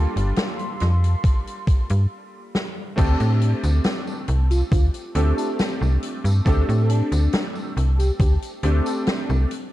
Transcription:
0.00 3.00 G3 medium
0.00 3.00 A#3 medium
0.00 2.97 D4 medium
0.00 3.00 F4 medium
0.00 2.94 G4 medium
0.00 2.99 A4 medium
0.00 2.94 F5 medium
0.00 2.94 C6 medium
0.16 0.33 G1 medium
0.16 closed hi-hat medium
0.36 snare loud
0.36 closed hi-hat medium
0.59 closed hi-hat medium
0.80 1.15 F2 medium
0.80 snare soft
0.80 closed hi-hat medium
1.04 closed hi-hat medium
1.24 kick loud
1.24 closed hi-hat medium
1.47 closed hi-hat medium
1.67 kick loud
1.67 closed hi-hat medium
1.89 2.07 G2 medium
1.89 closed hi-hat medium
2.55 snare medium
2.96 3.16 D2 loud
2.96 5.09 A3 medium
2.96 5.10 C4 medium
2.96 5.10 D4 medium
2.96 5.10 G4 medium
2.96 5.11 A4 medium
2.96 kick loud
2.96 closed hi-hat medium
2.96 crash loud
2.96 tambourine soft
3.20 3.54 A2 loud
3.20 closed hi-hat medium
3.20 tambourine soft
3.41 closed hi-hat medium
3.63 3.80 D2 medium
3.63 closed hi-hat medium
3.63 tambourine medium
3.84 snare loud
3.84 closed hi-hat medium
3.84 tambourine soft
4.07 tambourine soft
4.28 4.63 C2 medium
4.28 closed hi-hat medium
4.50 4.64 F4 medium
4.50 closed hi-hat medium
4.50 tambourine medium
4.72 4.89 D2 medium
4.72 4.86 F4 medium
4.72 kick loud
4.72 closed hi-hat medium
4.72 tambourine soft
4.94 closed hi-hat medium
4.94 tambourine soft
5.15 5.33 D2 loud
5.15 5.51 A3 medium
5.15 5.51 C4 medium
5.15 5.52 D4 medium
5.15 5.52 G4 medium
5.15 5.52 A4 medium
5.15 closed hi-hat medium
5.38 closed hi-hat medium
5.38 tambourine medium
5.59 snare loud
5.59 closed hi-hat medium
5.59 tambourine soft
5.81 5.98 C2 loud
5.81 tambourine soft
6.03 closed hi-hat medium
6.24 6.41 G2 medium
6.24 closed hi-hat medium
6.24 tambourine medium
6.45 6.64 D2 loud
6.45 8.58 A3 medium
6.45 8.58 C4 medium
6.45 8.59 D4 medium
6.45 8.59 G4 medium
6.45 8.59 A4 medium
6.45 kick loud
6.45 closed hi-hat medium
6.45 tambourine soft
6.69 7.02 A2 loud
6.69 closed hi-hat medium
6.69 tambourine soft
6.89 7.42 D4 loud
6.89 closed hi-hat loud
7.12 7.28 D2 medium
7.12 closed hi-hat medium
7.12 tambourine medium
7.33 snare loud
7.33 closed hi-hat medium
7.33 tambourine soft
7.55 tambourine soft
7.77 8.11 C2 medium
7.77 closed hi-hat medium
7.98 8.12 G4 medium
7.98 closed hi-hat medium
7.98 tambourine medium
8.20 8.37 D2 medium
8.20 8.34 G4 medium
8.20 kick loud
8.20 closed hi-hat loud
8.20 tambourine soft
8.42 closed hi-hat medium
8.42 tambourine soft
8.63 8.81 D2 loud
8.63 9.00 A3 medium
8.63 9.00 C4 medium
8.63 9.00 D4 medium
8.63 9.00 G4 medium
8.63 9.00 A4 medium
8.63 closed hi-hat medium
8.86 closed hi-hat medium
8.86 tambourine medium
9.07 snare loud
9.07 closed hi-hat medium
9.07 tambourine soft
9.30 9.46 C2 loud
9.30 tambourine soft
9.51 closed hi-hat medium

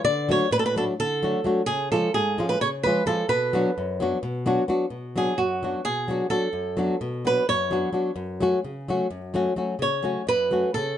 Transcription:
0.05 0.40 D3 medium
0.05 0.28 D5 loud
0.29 0.46 F#3 medium
0.29 0.46 A3 medium
0.29 0.46 D4 medium
0.29 0.47 F#4 medium
0.29 0.52 C#5 loud
0.51 0.87 A2 medium
0.51 0.59 B4 loud
0.59 0.65 A4 medium
0.66 0.77 B4 loud
0.76 0.93 F#3 medium
0.76 0.93 A3 medium
0.76 0.93 D4 medium
0.76 0.94 F#4 medium
0.76 0.83 A4 medium
1.00 1.34 D3 medium
1.00 1.66 A4 loud
1.23 1.39 F#3 medium
1.23 1.39 A3 medium
1.23 1.39 D4 medium
1.23 1.40 F#4 medium
1.44 1.61 F#3 medium
1.44 1.61 A3 medium
1.44 1.61 D4 medium
1.44 1.62 F#4 medium
1.66 2.03 C#3 medium
1.66 1.91 G#4 loud
1.92 2.08 F3 medium
1.92 2.08 G#3 medium
1.92 2.08 C#4 medium
1.92 2.09 F4 loud
1.92 2.14 A4 medium
2.14 2.50 G#2 medium
2.14 2.49 G#4 medium
2.38 2.55 F3 medium
2.38 2.55 G#3 medium
2.38 2.55 C#4 medium
2.38 2.56 F4 medium
2.49 2.61 B4 medium
2.61 2.96 C#3 medium
2.61 2.68 C#5 medium
2.83 3.01 F3 medium
2.83 3.01 G#3 medium
2.83 3.01 C#4 medium
2.83 3.02 F4 medium
2.83 3.06 B4 medium
3.06 3.22 F3 medium
3.06 3.23 G#3 medium
3.06 3.23 C#4 medium
3.06 3.24 F4 medium
3.06 3.29 A4 medium
3.29 3.64 B2 medium
3.29 4.43 B4 medium
3.53 3.70 F#3 medium
3.53 3.70 B3 medium
3.53 3.70 D4 medium
3.53 3.71 F#4 medium
3.78 4.12 F#2 medium
4.00 4.17 F#3 medium
4.00 4.17 B3 medium
4.00 4.17 D4 medium
4.00 4.18 F#4 medium
4.23 4.57 B2 medium
4.46 4.62 F#3 medium
4.46 4.63 B3 medium
4.46 4.63 D4 medium
4.46 4.63 F#4 medium
4.68 4.85 F#3 medium
4.68 4.85 B3 medium
4.68 4.85 D4 medium
4.68 4.85 F#4 medium
4.90 5.26 B2 medium
5.16 5.32 F#3 medium
5.16 5.33 B3 medium
5.16 5.33 D4 medium
5.16 5.33 F#4 medium
5.16 5.38 G#4 medium
5.38 5.74 F#2 medium
5.38 5.87 F#4 medium
5.63 5.79 F#3 medium
5.63 5.80 B3 soft
5.63 5.80 D4 soft
5.63 5.80 F#4 medium
5.85 6.20 B2 medium
5.85 6.30 G#4 medium
6.08 6.25 F#3 medium
6.08 6.26 B3 medium
6.08 6.26 D4 medium
6.08 6.26 F#4 medium
6.30 6.47 F#3 medium
6.30 6.47 B3 soft
6.30 6.48 D4 medium
6.30 6.48 F#4 soft
6.30 7.26 A4 medium
6.53 6.89 F#2 medium
6.77 6.94 F#3 medium
6.77 6.95 B3 medium
6.77 6.95 D4 medium
6.77 6.96 F#4 medium
7.01 7.37 B2 medium
7.25 7.42 F#3 medium
7.25 7.42 B3 medium
7.25 7.43 D4 medium
7.25 7.43 F#4 medium
7.25 7.48 B4 medium
7.49 7.84 F#2 medium
7.49 8.13 C#5 loud
7.71 7.88 F#3 medium
7.71 7.88 B3 medium
7.71 7.89 D4 medium
7.71 7.89 F#4 medium
7.93 8.10 F#3 medium
7.93 8.10 B3 soft
7.93 8.11 D4 soft
7.93 8.11 F#4 medium
8.16 8.52 F#2 medium
8.40 8.58 F#3 medium
8.40 8.59 A3 medium
8.40 8.59 C#4 medium
8.40 8.59 F#4 loud
8.64 9.01 C#3 medium
8.88 9.06 F#3 medium
8.88 9.06 A3 medium
8.88 9.06 C#4 medium
8.88 9.07 F#4 medium
9.10 9.46 F#2 medium
9.34 9.51 F#3 medium
9.34 9.52 A3 medium
9.34 9.52 C#4 medium
9.34 9.52 F#4 medium
9.56 9.74 F#3 medium
9.56 9.74 A3 medium
9.56 9.75 C#4 medium
9.56 9.75 F#4 medium
9.79 10.16 C#3 medium
9.79 10.28 C#5 medium
10.03 10.21 F#3 medium
10.03 10.21 A3 medium
10.03 10.22 C#4 medium
10.03 10.22 F#4 medium
10.27 10.64 F#2 medium
10.27 10.74 B4 loud
10.51 10.69 F#3 medium
10.51 10.69 A3 medium
10.51 10.70 C#4 medium
10.51 10.70 F#4 medium
10.74 10.98 C#3 medium
10.74 10.98 A4 medium

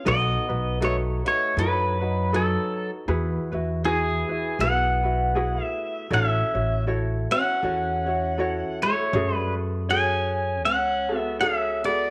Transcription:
0.05 0.34 B1 loud
0.05 0.78 B3 medium
0.05 0.49 D#4 medium
0.05 0.48 F#4 medium
0.05 0.48 A4 medium
0.05 0.47 B4 medium
0.05 0.79 D#5 medium
0.48 1.20 B1 medium
0.48 0.80 D#4 soft
0.48 0.81 F#4 soft
0.48 0.80 B4 medium
0.80 0.94 A3 medium
0.80 1.25 D#4 medium
0.80 1.25 F#4 medium
0.80 1.25 A4 medium
0.80 1.24 B4 medium
0.80 0.96 C#5 medium
1.25 1.55 A3 medium
1.25 1.57 D#4 soft
1.25 1.58 F#4 soft
1.25 1.57 B4 soft
1.25 1.59 C#5 medium
1.57 2.55 F#2 medium
1.57 2.29 F#3 medium
1.57 2.01 D#4 medium
1.57 2.00 F#4 medium
1.57 2.00 A4 medium
1.57 2.35 B4 medium
1.57 1.99 B4 medium
2.00 2.32 D#4 soft
2.00 2.32 F#4 soft
2.00 2.32 B4 soft
2.33 2.89 F#3 medium
2.33 3.08 D#4 medium
2.33 3.08 F#4 medium
2.33 3.08 A4 medium
2.33 2.90 A4 medium
2.33 3.07 B4 medium
3.08 3.37 E2 medium
3.08 3.52 E4 medium
3.08 3.52 F#4 medium
3.08 3.51 G#4 medium
3.08 3.50 B4 loud
3.52 4.22 E2 medium
3.52 3.84 E4 medium
3.52 3.84 F#4 medium
3.52 3.84 B4 medium
3.85 4.56 E3 medium
3.85 4.28 E4 medium
3.85 4.28 F#4 medium
3.85 4.28 G#4 medium
3.85 4.63 G#4 medium
3.85 4.27 B4 medium
4.29 4.60 E4 soft
4.29 4.60 F#4 soft
4.29 4.59 B4 medium
4.59 5.58 B1 medium
4.59 5.58 B3 medium
4.59 5.04 E4 medium
4.59 5.03 F#4 medium
4.59 5.03 G#4 medium
4.59 5.02 B4 medium
4.59 5.65 F#5 medium
5.03 5.35 E4 soft
5.03 5.35 F#4 soft
5.03 5.35 B4 soft
5.35 6.10 E4 medium
5.35 6.11 F#4 medium
5.35 6.11 G#4 medium
5.35 6.10 B4 medium
5.58 6.07 A3 medium
5.65 6.14 E5 medium
6.10 6.39 A1 medium
6.10 6.84 C#4 medium
6.10 6.55 E4 medium
6.10 6.54 F#4 medium
6.10 6.54 A4 medium
6.10 6.53 C#5 medium
6.10 6.84 E5 medium
6.54 7.25 A1 medium
6.54 6.86 E4 soft
6.54 6.86 F#4 soft
6.54 6.86 C#5 soft
6.87 7.31 E4 medium
6.87 7.31 F#4 medium
6.87 7.31 A4 medium
6.87 7.30 C#5 medium
7.31 8.78 C#4 medium
7.31 7.62 E4 soft
7.31 7.62 F#4 soft
7.31 7.63 C#5 medium
7.31 8.79 F#5 loud
7.62 8.61 E2 medium
7.62 8.06 E4 medium
7.62 8.06 F#4 medium
7.62 8.06 A4 medium
7.62 8.05 C#5 medium
8.06 8.38 E4 soft
8.06 8.38 F#4 soft
8.06 8.38 C#5 medium
8.38 9.14 E4 medium
8.38 9.14 F#4 medium
8.38 9.15 A4 medium
8.38 9.13 C#5 medium
8.82 9.35 A3 medium
8.82 9.35 C#5 medium
9.13 10.65 F#2 loud
9.13 9.88 F#4 medium
9.13 9.89 G#4 medium
9.13 9.90 A4 medium
9.13 9.88 C#5 medium
9.35 9.54 G3 medium
9.35 9.54 B4 medium
9.89 10.61 C#4 medium
9.89 11.09 F#4 medium
9.89 11.09 G#4 medium
9.89 11.08 A4 medium
9.89 11.08 C#5 medium
9.89 10.62 G#5 loud
10.65 12.10 C#2 medium
10.65 11.18 C#4 medium
10.65 11.18 F#5 loud
11.09 11.40 F#4 soft
11.09 11.40 G#4 soft
11.09 11.41 A4 medium
11.18 11.37 B3 medium
11.18 11.37 E5 loud
11.40 11.81 C#4 medium
11.40 11.85 F#4 medium
11.40 11.85 G#4 medium
11.40 11.84 A4 medium
11.40 11.84 C#5 medium
11.40 11.58 F5 medium
11.58 11.86 E5 medium
11.84 12.10 B3 medium
11.84 12.10 F#4 soft
11.84 12.10 G#4 soft
11.84 12.10 A4 medium
11.84 12.10 D5 medium

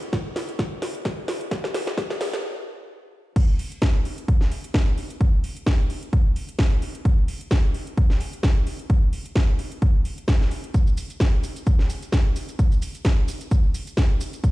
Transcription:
0.02 closed hi-hat medium
0.13 kick loud
0.13 snare medium
0.13 closed hi-hat medium
0.36 snare medium
0.36 open hi-hat loud
0.49 closed hi-hat medium
0.59 kick loud
0.59 snare medium
0.59 closed hi-hat medium
0.82 snare medium
0.82 open hi-hat loud
0.95 closed hi-hat medium
1.05 kick loud
1.05 snare medium
1.05 closed hi-hat medium
1.28 snare medium
1.28 open hi-hat loud
1.41 closed hi-hat medium
1.51 kick loud
1.51 snare medium
1.51 closed hi-hat medium
1.64 snare medium
1.74 snare medium
1.74 open hi-hat loud
1.87 snare medium
1.87 closed hi-hat soft
1.97 kick loud
1.97 snare medium
1.97 closed hi-hat medium
2.10 snare medium
2.21 snare loud
2.21 open hi-hat medium
2.33 snare medium
2.33 closed hi-hat medium
3.36 kick loud
3.36 closed hi-hat medium
3.36 crash loud
3.59 open hi-hat loud
3.72 closed hi-hat medium
3.82 kick loud
3.82 snare loud
3.82 closed hi-hat medium
4.05 open hi-hat medium
4.18 closed hi-hat medium
4.28 kick loud
4.28 closed hi-hat medium
4.41 snare soft
4.51 open hi-hat loud
4.64 closed hi-hat medium
4.74 kick loud
4.74 snare loud
4.74 closed hi-hat medium
4.98 open hi-hat medium
5.10 closed hi-hat medium
5.21 kick loud
5.21 closed hi-hat medium
5.44 open hi-hat loud
5.57 closed hi-hat medium
5.66 kick loud
5.66 snare loud
5.66 closed hi-hat medium
5.90 open hi-hat loud
6.03 closed hi-hat medium
6.13 kick loud
6.13 closed hi-hat medium
6.36 open hi-hat loud
6.49 closed hi-hat medium
6.59 kick loud
6.59 snare loud
6.59 closed hi-hat medium
6.82 open hi-hat loud
6.95 closed hi-hat medium
7.05 kick loud
7.05 closed hi-hat medium
7.28 open hi-hat loud
7.41 closed hi-hat medium
7.51 kick loud
7.51 snare loud
7.51 closed hi-hat medium
7.74 open hi-hat loud
7.87 closed hi-hat medium
7.97 kick loud
7.97 closed hi-hat medium
8.10 snare soft
8.20 open hi-hat loud
8.33 closed hi-hat medium
8.43 kick loud
8.43 snare loud
8.43 closed hi-hat medium
8.67 open hi-hat loud
8.79 closed hi-hat medium
8.90 kick loud
8.90 closed hi-hat medium
9.13 open hi-hat loud
9.26 closed hi-hat medium
9.36 kick loud
9.36 snare loud
9.36 closed hi-hat soft
9.59 open hi-hat loud
9.72 closed hi-hat medium
9.82 kick loud
9.82 closed hi-hat medium
10.05 open hi-hat loud
10.18 closed hi-hat medium
10.28 kick loud
10.28 snare loud
10.28 closed hi-hat medium
10.41 snare soft
10.51 open hi-hat loud
10.64 closed hi-hat medium
10.74 kick loud
10.74 closed hi-hat medium
10.74 shaker soft
10.87 shaker soft
10.97 open hi-hat loud
10.97 shaker medium
11.10 closed hi-hat medium
11.10 shaker soft
11.20 kick loud
11.20 snare loud
11.20 closed hi-hat soft
11.20 shaker soft
11.44 open hi-hat medium
11.44 shaker medium
11.56 closed hi-hat medium
11.56 shaker soft
11.67 kick loud
11.67 closed hi-hat medium
11.67 shaker soft
11.79 snare soft
11.90 open hi-hat loud
11.90 shaker medium
12.02 closed hi-hat medium
12.02 shaker soft
12.12 kick loud
12.12 snare loud
12.12 closed hi-hat medium
12.12 shaker soft
12.36 open hi-hat loud
12.36 shaker medium
12.49 closed hi-hat medium
12.49 shaker soft
12.59 kick loud
12.59 closed hi-hat medium
12.59 shaker soft
12.72 shaker soft
12.82 open hi-hat loud
12.82 shaker medium
12.95 closed hi-hat medium
12.95 shaker soft
13.05 kick loud
13.05 snare loud
13.05 closed hi-hat medium
13.05 shaker soft
13.28 open hi-hat medium
13.28 shaker medium
13.41 closed hi-hat medium
13.41 shaker soft
13.51 kick loud
13.51 closed hi-hat medium
13.51 shaker soft
13.74 open hi-hat loud
13.74 shaker medium
13.87 closed hi-hat medium
13.87 shaker soft
13.97 kick loud
13.97 snare loud
13.97 closed hi-hat medium
13.97 shaker soft
14.21 open hi-hat medium
14.21 shaker medium
14.33 closed hi-hat medium
14.33 shaker soft
14.44 kick loud
14.44 closed hi-hat medium
14.44 shaker soft

